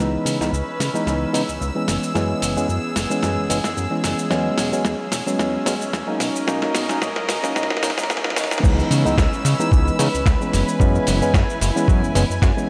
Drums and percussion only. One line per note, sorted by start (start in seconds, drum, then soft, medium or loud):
0.00 cabasa soft
0.26 open hi-hat loud
0.26 cabasa medium
0.41 snare soft
0.41 cabasa soft
0.54 cabasa soft
0.80 snare soft
0.80 open hi-hat medium
0.80 cabasa medium
0.95 cabasa soft
1.07 snare soft
1.07 cabasa soft
1.34 open hi-hat loud
1.34 cabasa medium
1.49 cabasa soft
1.62 cabasa soft
1.88 snare medium
1.88 open hi-hat medium
1.88 cabasa medium
2.03 cabasa soft
2.15 snare medium
2.15 cabasa soft
2.42 open hi-hat loud
2.42 cabasa medium
2.57 cabasa soft
2.69 cabasa soft
2.96 snare medium
2.96 open hi-hat medium
2.96 cabasa medium
3.11 cabasa soft
3.23 snare medium
3.23 cabasa soft
3.50 open hi-hat loud
3.50 cabasa medium
3.64 snare medium
3.64 cabasa soft
3.77 cabasa soft
4.04 snare medium
4.04 open hi-hat loud
4.04 cabasa medium
4.19 cabasa soft
4.31 snare medium
4.31 cabasa soft
4.58 snare medium
4.58 open hi-hat loud
4.58 cabasa medium
4.73 cabasa soft
4.85 snare medium
4.85 cabasa soft
5.12 snare medium
5.12 open hi-hat loud
5.12 cabasa medium
5.28 cabasa soft
5.39 snare medium
5.39 cabasa soft
5.66 snare medium
5.66 open hi-hat loud
5.66 cabasa medium
5.81 cabasa soft
5.93 snare medium
5.93 cabasa soft
6.20 snare medium
6.20 open hi-hat loud
6.20 cabasa medium
6.36 cabasa soft
6.48 snare medium
6.48 cabasa soft
6.62 snare medium
6.75 snare medium
6.75 open hi-hat loud
6.75 cabasa medium
6.89 snare medium
6.89 cabasa soft
7.02 snare medium
7.02 cabasa soft
7.16 snare medium
7.29 snare loud
7.29 open hi-hat loud
7.29 cabasa medium
7.44 snare medium
7.44 cabasa soft
7.56 snare loud
7.56 cabasa soft
7.63 snare medium
7.70 snare medium
7.77 snare medium
7.83 snare loud
7.83 open hi-hat loud
7.83 cabasa medium
7.90 snare medium
7.98 snare medium
7.98 cabasa soft
8.03 snare medium
8.10 snare loud
8.10 cabasa soft
8.17 snare medium
8.24 snare loud
8.30 snare medium
8.36 snare loud
8.36 open hi-hat loud
8.36 cabasa medium
8.44 snare loud
8.51 snare loud
8.51 cabasa soft
8.58 snare loud
8.64 kick loud
8.64 crash loud
8.64 cabasa soft
8.79 cabasa soft
8.91 open hi-hat loud
8.91 cabasa medium
9.06 cabasa soft
9.18 kick loud
9.18 snare loud
9.18 cabasa soft
9.33 cabasa soft
9.45 open hi-hat medium
9.45 cabasa medium
9.60 cabasa soft
9.72 kick loud
9.72 cabasa soft
9.87 cabasa soft
9.99 open hi-hat loud
9.99 cabasa medium
10.15 cabasa soft
10.26 kick loud
10.26 snare loud
10.26 cabasa soft
10.41 cabasa soft
10.53 open hi-hat medium
10.53 cabasa medium
10.68 cabasa soft
10.80 kick loud
10.80 cabasa soft
10.95 cabasa soft
11.07 open hi-hat loud
11.07 cabasa medium
11.22 cabasa soft
11.34 kick loud
11.34 snare loud
11.34 cabasa soft
11.50 cabasa soft
11.61 open hi-hat loud
11.61 cabasa medium
11.77 cabasa soft
11.88 kick loud
11.88 cabasa soft
12.04 cabasa soft
12.15 open hi-hat loud
12.15 cabasa medium
12.31 cabasa soft
12.42 kick loud
12.42 snare loud
12.42 cabasa soft
12.58 cabasa soft